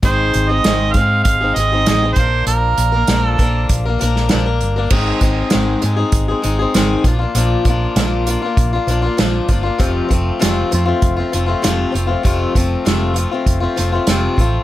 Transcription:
0.02 G#1 G#2 D#3 G#3 C4 D#4 G#4 C5, kick, closed hi-hat
0.34 G#1, closed hi-hat
0.49 G#3 C4 D#4 G#4 D#5
0.64 G#1 G#2 D#3 G#3 C4 D#4 G#4, snare, closed hi-hat
0.94 G#2 G#3 C4 F5, kick, closed hi-hat
0.98 D#4 G#4
1.24 G#1 F5, kick, closed hi-hat
1.41 G#3 C4 D#4 G#4
1.54 G#1 G#3 C4 D#4 D#5, closed hi-hat
1.59 G#4
1.72 G#3 C4 D#4 G#4
1.86 A1 G#2 D#3 G#3 C4 G#4, snare, closed hi-hat
1.90 D#4
2.03 G#3 C4 D#4 G#4
2.12 C5, closed hi-hat
2.17 A#1 A#2 F3 A#3 D4 A#4, kick
2.46 A#1 A#4, closed hi-hat
2.78 A#1, closed hi-hat
2.92 A#3 D4 A#4
3.07 A#1 A#2 F3 A#3 D4 A#4, snare, closed hi-hat
3.25 A4
3.38 A#1 F3 A#3 D4 A#4, kick, closed hi-hat
3.69 A#1, kick, closed hi-hat
3.86 A#3 D4 A#4
3.99 A#1 F3 A#3 D4 A#4, closed hi-hat
4.16 snare
4.29 A#2 F3 A#3 D4 A#4, snare, closed hi-hat
4.33 A#1
4.46 A#3 D4 A#4
4.61 G1, closed hi-hat
4.76 A#3 D4 A#4
4.90 G#1 G#2 D#3 G#3 C4 D#4 G#4, kick, crash
5.21 G#1 G#3 C4 D#4 G#4, kick, closed hi-hat
5.50 G#2 D#3 G#3 C4 D#4 G#4, snare, closed hi-hat
5.55 G#1
5.81 G#2 G#3 C4 D#4 G#4, closed hi-hat
5.96 G#3 C4 D#4 G#4
6.12 G#1, kick, closed hi-hat
6.28 G#3 C4 D#4 G#4
6.42 G#1 G#3 C4 D#4 G#4, closed hi-hat
6.59 G#3 C4 D#4 G#4
6.74 G#1 G#2 D#3 G#3 C4 D#4 G#4, snare, closed hi-hat
7.04 A#1 F3 A#3 D4 F4, kick, closed hi-hat
7.19 D4 F4
7.23 A#3
7.35 A#1 A#2 F3 A#3 D4 F4, closed hi-hat
7.65 A#1 F3 A#3 D4, kick, closed hi-hat
7.70 F4
7.96 A#1 A#2 F3 A#3 D4, snare, closed hi-hat
8.00 F4
8.26 F3 A#3 D4 F4, closed hi-hat
8.42 D4 F4
8.46 A#3
8.57 A#1, kick, closed hi-hat
8.73 A#3 D4 F4
8.87 A#1 F3 A#3 D4 F4, closed hi-hat
9.02 A#3 D4 F4
9.17 A#1 A#2 F3 A#3 D4 F4, snare, closed hi-hat
9.48 G1 F3 A#3 D4 F4, kick, closed hi-hat
9.63 A#3 D4 F4
9.78 F1 F2 C3 F3 A3 C4 F4, kick, closed hi-hat
10.09 F1 F3 A3 C4, kick, closed hi-hat
10.13 F4
10.39 F1 F2 C3 F3 A3 C4 F4, snare, closed hi-hat
10.71 F2 F3 A3 C4 F4, closed hi-hat
10.86 F3 A3 C4 F4
11.02 F1, kick, closed hi-hat
11.16 F3 A3 C4 F4
11.32 F1 F3 A3 C4 F4, closed hi-hat
11.46 A3 C4 F4
11.50 F3
11.62 F1 F2 C3 F3 A3 C4 F4, snare, closed hi-hat
11.92 F1 F3 A3 C4 F4, closed hi-hat
12.07 F3 A3 C4 F4
12.23 F1 F2 C3 F3 A3 C4 F4, kick, closed hi-hat
12.55 F1 F3 A3 C4 F4, kick, closed hi-hat
12.85 F1 F2 C3 F3 A3 C4 F4, snare, closed hi-hat
13.14 F3 A3 C4 F4, closed hi-hat
13.31 F3 A3 C4 F4
13.46 F1, kick, closed hi-hat
13.60 F3 A3 C4 F4
13.76 F1 F3 A3 C4 F4, closed hi-hat
13.92 F3 A3 C4 F4
14.07 F1 F2 C3 F3 A3 C4 F4, snare, closed hi-hat
14.37 A1 F3 A3 C4, kick, closed hi-hat
14.41 F4

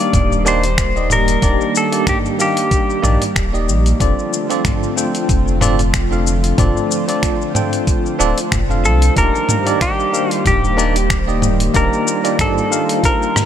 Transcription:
Already playing: D#3 G3 A#3 D4 D#4 G4 C5 D5 F5
0.00 shaker
0.13 D#1, kick, closed hi-hat, mid tom, shaker
0.32 shaker
0.45 A#3 D4 D#4 G4 C5 D5, shaker
0.63 closed hi-hat, shaker
0.78 finger snap, kick, closed hi-hat, shaker
0.95 A#3 D#4 G4 D5 D#5, shaker
1.10 A#4, mid tom, shaker
1.28 closed hi-hat, shaker
1.42 D#1 A#3 D4 D#4 G4 D5, kick, closed hi-hat, shaker
1.61 shaker
1.75 A4, shaker
1.92 A#3 D4 D#4 G4 D5, closed hi-hat, shaker
2.07 G4, finger snap, kick, closed hi-hat, mid tom, shaker
2.25 shaker
2.38 A#3 D4 D#4 G4 F5, shaker
2.57 closed hi-hat, shaker
2.71 kick, closed hi-hat, shaker
2.90 shaker
3.03 A#1 A#3 D4 D#4 G4 D5, mid tom, shaker
3.22 closed hi-hat, shaker
3.36 D#1, finger snap, kick, closed hi-hat, shaker
3.53 A#3 D#4 G4 D5 D#5, shaker
3.68 A#1, shaker
3.86 closed hi-hat, shaker
4.00 F1 D3 F3 A3 C4 D4 F4 A4 D5, kick, closed hi-hat, shaker
4.19 shaker
4.33 shaker
4.50 C4 D4 F4 A4 D5, closed hi-hat, shaker
4.65 finger snap, kick, closed hi-hat, mid tom, shaker
4.83 shaker
4.96 C4 D4 F4 A4 G5, shaker
5.15 closed hi-hat, shaker
5.29 F1, kick, closed hi-hat, shaker
5.48 shaker
5.61 C4 D4 F4 A4 D5, mid tom, shaker
5.79 closed hi-hat, shaker
5.94 finger snap, kick, closed hi-hat, shaker
6.11 C4 D4 F4 A4 F5, shaker
6.27 shaker
6.44 closed hi-hat, shaker
6.58 F1 C4 D4 F4 A4 C5 D5, kick, closed hi-hat, mid tom, shaker
6.77 shaker
6.91 shaker
7.08 C4 D4 F4 A4 D5, closed hi-hat, shaker
7.23 finger snap, kick, closed hi-hat, shaker
7.41 shaker
7.54 C4 D4 F4 A4 G5, mid tom, shaker
7.73 closed hi-hat, shaker
7.87 kick, closed hi-hat, shaker
8.06 shaker
8.19 D1 C4 D4 F4 A4 D5, shaker
8.38 closed hi-hat, shaker
8.52 F1, finger snap, kick, closed hi-hat, mid tom, shaker
8.69 C4 D4 F4 A4 F5, shaker
8.85 C2 A4, shaker
9.02 closed hi-hat, shaker
9.16 D#1 D#3 G3 A#3 D4 D#4 G4 A#4 D5, kick, closed hi-hat, shaker
9.35 shaker
9.49 mid tom, shaker
9.65 A#3 D4 D#4 G4 D5, closed hi-hat, shaker
9.81 G4, finger snap, kick, closed hi-hat, shaker
10.00 shaker
10.12 A#3 D4 D#4 G4 F5, shaker
10.31 F4, closed hi-hat, shaker
10.45 D#1 G4, kick, closed hi-hat, mid tom, shaker
10.64 shaker
10.77 A#3 D4 D#4 G4 D5, shaker
10.96 closed hi-hat, shaker
11.10 finger snap, kick, closed hi-hat, shaker
11.27 A#3 D#4 G4 D5 D#5, shaker
11.42 mid tom, shaker
11.60 closed hi-hat, shaker
11.74 D#1 A#3 D4 D#4 F4 G4 A#4 D5, kick, closed hi-hat, shaker
11.93 shaker
12.07 shaker
12.24 A#3 D4 D#4 G4 D5, closed hi-hat, shaker
12.39 A4, finger snap, kick, closed hi-hat, mid tom, shaker
12.58 shaker
12.70 A#3 D4 D#4 G4 F5, shaker
12.89 closed hi-hat, shaker
13.04 A#4, kick, closed hi-hat, shaker
13.22 shaker
13.36 cross-stick, mid tom, shaker

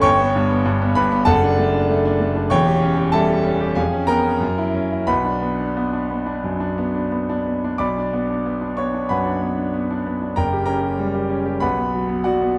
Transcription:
0.02 G1 C#5 G5 C#6
0.20 B3
0.36 G2
0.51 B3
0.65 G2
0.82 B3
0.95 G2 B4 B5
1.12 B3
1.25 F#1 A4 F#5 A5
1.43 D4
1.59 A3
1.74 D4
1.89 A3
2.05 D4
2.21 A3
2.36 D4
2.50 E1 E2 C#5 G5 C#6
2.67 G4
2.82 C#4
2.97 G4
3.12 G3 A4 E5 A5
3.29 G4
3.44 C#4
3.60 G4
3.75 F2 G#4 F5 G#5
3.93 C#4
4.07 B3 A#4 G5 A#5
4.23 C#4
4.41 F#2
4.58 E4
4.75 C#4
4.92 E4
5.07 B1 B4 F#5 B5
5.25 D4
5.42 B3
5.60 D4
5.77 B3
5.93 D4
6.10 B3
6.26 D4
6.44 F#2
6.60 D4
6.78 B3
6.95 D4
7.12 B3
7.29 D4
7.47 B3
7.64 D4
7.78 B1 D5 B5 D6
7.98 D4
8.13 B3
8.30 D4
8.46 B3
8.62 D4
8.77 B3 C#5 C#6
8.94 D4
9.09 F#2 B4 F#5 B5
9.26 D4
9.41 B3
9.58 D4
9.74 B3
9.90 D4
10.07 B3
10.22 D4
10.36 F#1 A#4 G5 A#5
10.53 G4
10.66 C#4 A#4 G5 A#5
10.83 G4
10.99 G3
11.14 G4
11.30 C#4
11.46 G4
11.60 B1 B4 F#5 B5
11.78 B3
11.94 F#3
12.09 B3
12.24 F#3 F#4 D5 F#5
12.42 B3

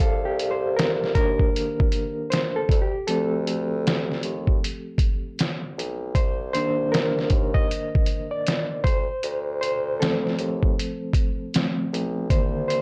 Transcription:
Already playing: D5 F5
0.00 C2 A4, closed hi-hat
0.25 G4
0.39 closed hi-hat
0.51 C5
0.77 A#4, snare, closed hi-hat
1.04 snare
1.15 D#2 D#3 A#3 D4 A#4, kick, closed hi-hat
1.39 kick
1.56 closed hi-hat
1.80 kick
1.92 closed hi-hat
2.30 C5, snare, closed hi-hat
2.56 A4
2.69 D2, kick, closed hi-hat
2.82 G4
3.07 D2 F3 A3 C4 A4, closed hi-hat
3.47 closed hi-hat
3.87 snare, closed hi-hat
4.12 snare
4.23 D#2, closed hi-hat
4.47 kick
4.64 closed hi-hat
4.98 kick, closed hi-hat
5.39 snare, closed hi-hat
5.78 B1, closed hi-hat
6.15 C2 C5, kick, closed hi-hat
6.53 D#3 A#3 D4 C5, closed hi-hat
6.92 A#4, snare, closed hi-hat
7.19 snare
7.30 D#2, kick, closed hi-hat
7.54 D#5, kick
7.71 closed hi-hat
7.95 kick
8.06 closed hi-hat
8.31 D5
8.47 snare, closed hi-hat
8.84 D2 C5, kick, closed hi-hat
9.23 D2, closed hi-hat
9.61 C5, closed hi-hat
10.00 F3 A3 C4 A4, snare, closed hi-hat
10.27 snare
10.39 D#2, closed hi-hat
10.63 kick
10.79 closed hi-hat
11.13 kick, closed hi-hat
11.54 F3 A3 C4, snare, closed hi-hat
11.93 B1, closed hi-hat
12.30 C2 D3 D#3 A#3 C5, kick, closed hi-hat
12.68 C5, closed hi-hat

